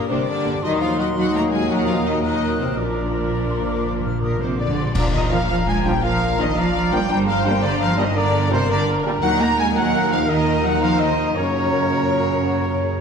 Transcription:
Already playing: G2 A#2 G3 A#3 D4 G4 A#4 D5
0.10 G1 C3 A#3 C4 D4 C5 D6
0.27 D3 D4 D5
0.45 G1 A#3 D4
0.62 D#2 A#2 D#3 F#3 A#3 D#4 F#4 A#4 D#5 C6
0.81 F3 F4 F5
0.98 F#3 F#4 F#5
1.16 F#3 D#4 F#4 D#5 F#5
1.34 A#3 A#4 A#5
1.50 G#3 G#4 G#5
1.67 F#3 D#4 F#4 F#5 A#5
1.72 F#4 D#5
1.87 F3 F4 F5
2.05 D#3 D#4 D#5
2.22 D#3 F#3 D#4 F#4 D#5 F#6
2.60 C3 C4 C5
2.77 A#1 A#2 F3 A#3 D4 F4 A#4 D5 D6
2.86 A#2
2.93 A#2
3.00 A#2
3.08 A#2
3.15 A#2
3.23 A#2
3.31 A#2 A#5
3.38 A#2
3.46 A#2 C6
3.61 A#2
3.68 D6
3.76 A#2
3.83 A#2
3.87 D6
3.91 A#2
4.00 A#2
4.05 A#2 F6
4.15 A#2
4.22 A#2 A#4 D#6
4.30 A#2
4.37 A#2 C5 D6
4.41 A#2 C3
4.52 A#2
4.58 A#2 D3 D5
4.68 A#2
4.75 A#2 C6
4.84 A#2
4.94 A#1 A#2 D3 D4 F4 A#4 D5 A#5, concert bass drum, crash
5.12 D#3 A#3 D4 D#5
5.30 A#2 F3 A#3 D4 F4 F5
5.48 F3 A#3 D4 F4 A#4 F5 A#5
5.66 G#3 D4 F4 G#5
5.84 A#2 F3 G3 A#3 D4 G5
6.01 F3 D4 F4 A#4 F5 A#5
6.21 A#3 D4
6.38 A#2 D#3 F3 A#3 D4 F4 D#5
6.55 F3 A#3 D4 F4 A#4 D5 F5 A#5
6.73 F3 D4 F4 F5
6.91 A#2 F3 G3 A#3 D4 G5
7.09 G1 G3 A#3 D4 A#4 C5 G5 A#5
7.27 F3 D4 G4 F5
7.45 A#2 G3 A#3 D4 A#4 G5
7.62 D3 D4 G4 A#4 D5 A#5
7.80 F3 A#3 A#4 F5
7.96 A#2 D#3 G3 A#3 D4 G4 D#5
8.15 D3 A#3 D4 A#4 D5 A#5
8.35 D4 G4
8.50 A#2 C3 G3 A#3 D4 A#4 C5
8.68 D3 D4 G4 A#4 D5 A#5
8.88 A#3 A#4
9.04 A#2 G3 A#3 D4 G4
9.21 D#2 A#2 D#3 F#3 A#3 D#4 A#4 F#5 A#5
9.40 A#3 A#5
9.57 G#3 G#5
9.73 A#2 D#3 F#3 A#3 D#4 A#4 F#5 A#5
10.10 F3 F5
10.27 A#2 D#3 A#3 D#4 A#4 D#5 A#5
10.63 F#3 F#5
10.81 F3 C5 F5
10.99 D#3 D#5
11.34 F#2 A#2 C#3 F#3 A#3 C#4 A#4 C#5 A#5
11.38 C#4
11.90 D#4
12.08 F4
12.26 F#4
12.44 F#4
12.63 A#4
12.80 G#4

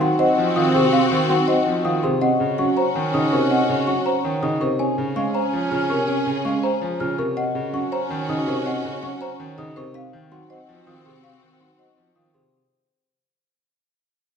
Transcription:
Already playing: C4 F#4
0.01 F#3 D#4 F#5 C6
0.19 C5 D#5 F#5
0.38 F3
0.56 D#3 F4 F5 D#6
0.74 C3 G#4 C5 C6
0.93 C4 F5
1.11 D#3
1.30 F#3 D#4 F#5 C6
1.48 C5 D#5 F#5
1.67 F3
1.85 D#3 F4 F5 D#6
2.03 C3 G#4 C5 C6
2.21 C4 C#4 F#4 D#5 F#5
2.40 C#3
2.58 F#3 C#4 F#5 C#6
2.77 C5 C#5 A#5
2.95 D#3
3.14 C#3 D#4 D#5 D#6
3.32 C3 A#4 C5 C#6
3.50 C4 D#5 F#5
3.69 C#3
3.87 F#3 C#4 F#5 C#6
4.06 C5 C#5 A#5
4.25 D#3
4.43 C#3 D#4 D#5 D#6
4.61 C3 A#4 C5 C#6
4.79 C4 C#4 G#4 C#5 G#5
4.98 C#3
5.16 G#3 C#4 F5 C#6
5.34 C5 A#5
5.53 F3
5.71 C#3 F4 C#5 F6
5.90 C3 A#4 C#6
6.08 C4 C#5 G#5
6.27 C#3
6.45 G#3 C#4 F5 C#6
6.63 C5 A#5
6.82 F3
7.00 C#3 F4 C#5 F6
7.18 C3 A#4 C#6
7.37 C4 C#4 F#4 D#5 F#5
7.55 C#3
7.73 F#3 C#4 F#5 C#6
7.92 C5 C#5 A#5
8.10 D#3
8.29 C#3 D#4 D#5 D#6
8.47 C3 A#4 C5 C#6
8.66 C4 D#5 F#5
8.85 C#3
9.03 F#3 C#4 F#5 C#6
9.21 C5 C#5 A#5
9.40 D#3
9.58 C#3 D#4 D#5 D#6
9.76 C3 A#4 C5 C#6
9.94 C4 F#4 F5
10.13 D#3
10.32 F#3 D#4 F#5 C6
10.50 C5 D#5 F#5
10.69 F3
10.87 D#3 F4 F5 D#6
11.05 C3 G#4 C5 C6
11.24 C4 F5
11.42 D#3
11.60 F#3 D#4 F#5 C6
11.79 C5 D#5 F#5
11.97 F3
12.16 D#3 F4 F5 D#6
12.34 C3 G#4 C5 C6

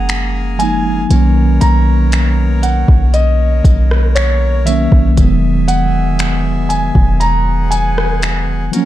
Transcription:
Already playing: F#1 A#3 G#4 F#5 G#5 A#5
0.09 finger snap, closed hi-hat
0.58 F3 G#3 A#3 G#5, closed hi-hat
0.63 D#4
1.09 B1 B2 D#3 F#3 A#3 A#4 C#5, closed hi-hat
1.14 C#4
1.61 B1 A#5, closed hi-hat
2.12 finger snap, closed hi-hat
2.63 F#5, closed hi-hat
2.88 B1, kick
3.14 D#5, closed hi-hat
3.64 B1, kick, closed hi-hat
3.91 cross-stick
4.15 C#5, finger snap, closed hi-hat
4.65 D#3 F#3 A#3 E5, closed hi-hat
4.70 C#4
4.92 B1, kick
5.16 E1 D#3 F#3 G#3 G#4 E5, kick, closed hi-hat
5.20 B3
5.68 F#5, closed hi-hat
6.19 finger snap, closed hi-hat
6.69 G#5, closed hi-hat
6.95 E1, kick
7.20 F#5 A#5, closed hi-hat
7.71 G#5, closed hi-hat
7.98 cross-stick
8.22 finger snap, closed hi-hat
8.72 F3 F#3 A#3 C#4 A#4 F#5, closed hi-hat
8.77 C#4

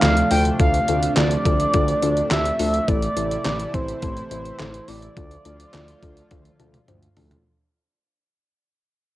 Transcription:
Already playing: C3 F3 A3 D4
0.02 D2 A3 D4 F4 A4 F5, snare, clap, closed hi-hat
0.17 closed hi-hat
0.31 D2 A3 D4 F4 A4 G5, open hi-hat
0.45 closed hi-hat
0.60 D2 A3 D4 F4 A4 F5, kick, closed hi-hat
0.74 closed hi-hat
0.88 D2 A3 D4 F4 A4, closed hi-hat
1.03 closed hi-hat
1.17 D2 A3 D4 F4 A4 D5, snare, clap, closed hi-hat
1.31 closed hi-hat
1.45 D2 A3 D4 F4 A4, kick, closed hi-hat
1.60 closed hi-hat
1.74 D2 A3 D4 F4 A4, kick, closed hi-hat
1.88 closed hi-hat
2.02 D2 A3 D4 F4 A4, closed hi-hat
2.17 closed hi-hat
2.31 D2 A3 D4 F4 G4 E5, snare, clap, closed hi-hat
2.45 closed hi-hat
2.59 D2 A3 D4 F4 A4, open hi-hat
2.74 closed hi-hat
2.88 A1 C3 E3 A3 C4 E4 A4 D5, kick, closed hi-hat
3.02 closed hi-hat
3.17 A1 A3 C4 E4 A4, closed hi-hat
3.31 closed hi-hat
3.45 A1 A3 C4 E4 A4, snare, clap, closed hi-hat
3.60 closed hi-hat
3.74 A1 A3 C4 E4 A4 C5, kick, closed hi-hat
3.88 closed hi-hat
4.02 A1 A3 C4 E4 A4, kick, closed hi-hat
4.17 closed hi-hat
4.31 A1 A3 C4 E4 C5, closed hi-hat
4.45 closed hi-hat
4.59 A1 A3 C4 E4 A4, snare, clap, closed hi-hat
4.74 closed hi-hat
4.88 A1 A3 C4 E4 A4 D5, open hi-hat
5.02 closed hi-hat
5.17 D2 D3 F3 A3 D4 F4 A4, kick, closed hi-hat
5.31 closed hi-hat
5.45 D2 A3 D4 F4 A4, closed hi-hat
5.60 closed hi-hat
5.74 D2 A3 D4 F4 A4, snare, clap, closed hi-hat
5.88 closed hi-hat
6.03 D2 A3 D4 F4 A4, kick, closed hi-hat
6.17 closed hi-hat
6.31 D2 A3 D4 F4 A4, kick, closed hi-hat, high tom
6.45 closed hi-hat
6.60 D2 A3 D4 F4 A4, closed hi-hat, mid tom
6.74 closed hi-hat, mid tom
6.88 D2 A3 D4 F4 C5, closed hi-hat, mid tom
7.03 closed hi-hat
7.17 D2 A3 D4 F4 A4, floor tom, open hi-hat
7.31 closed hi-hat, floor tom

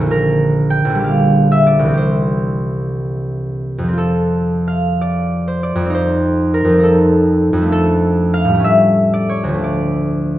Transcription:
Already playing: A#1 D3 F3 A4 C5 F5
0.01 A#3
0.06 F4
0.11 A#4
0.70 G5
0.85 A#1
0.90 D3
0.95 G3
0.99 G4
1.04 F5
1.52 E5
1.67 D5
1.79 C2
1.83 E3
1.89 C4
1.94 G4 C5
3.78 F2
3.84 F3
3.88 C4
3.93 F4
3.98 A4
4.68 F5
5.01 D5
5.48 C5
5.63 D5
5.75 F2
5.80 F3
5.86 C4
5.90 D#4
5.95 C5
6.54 A#4
6.65 F2
6.69 F3
6.74 C4
6.79 D#4
6.83 A4
7.53 F2
7.57 F3
7.62 A3
7.67 D4
7.72 A4
8.34 F5
8.45 A2
8.49 G3
8.54 A3
8.60 C#4
8.64 E5
9.14 D5
9.29 C#5
9.44 D2
9.48 F3
9.54 A3
9.58 D4
9.63 D5

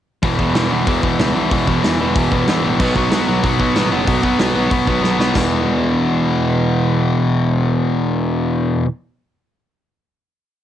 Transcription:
0.22 E1 E2 B2 E3, kick, open hi-hat
0.39 E1 E2 B2 E3, kick
0.55 E1 E2 B2 E3, snare, open hi-hat
0.71 E1 E2 B2 E3
0.87 E1 E2 B2 E3, kick, open hi-hat
1.03 E2 B2 E3, kick
1.18 C#2 E2 B2 E3, snare, open hi-hat
1.35 B1 E2 B2 E3
1.51 E1 E2 B2 E3, kick, open hi-hat
1.67 E2 B2 E3, kick
1.83 E1 E2 B2 E3, snare, open hi-hat
2.00 E2 B2 E3
2.15 E1 E2 B2 E3, kick, open hi-hat
2.32 E1 E2 B2 E3, kick
2.47 E1 E2 B2 E3, snare, open hi-hat
2.65 A1 E2 B2 E3
2.80 B1 B2 F#3 B3, kick, crash
2.96 B1 B2 F#3 B3, kick
3.11 B1 B2 F#3 B3, snare, open hi-hat
3.28 B1 B2 F#3 B3
3.43 B1 B2 F#3 B3, kick, open hi-hat
3.60 B2 F#3 B3, kick
3.75 A1 B2 F#3 B3, snare, open hi-hat
3.92 F#1 B2 F#3 B3
4.07 B1 B2 F#3 B3, kick, open hi-hat
4.23 B2 F#3 B3, kick
4.39 B1 B2 F#3 B3, snare, open hi-hat
4.55 B2 F#3 B3
4.70 B1 B2 F#3 B3, kick, open hi-hat
4.87 B1 B2 F#3 B3, kick
5.02 B1 B2 F#3 B3, snare
5.19 B1 B2 F#3 B3, snare
5.34 E1 E2 B2 E3, kick, snare, splash

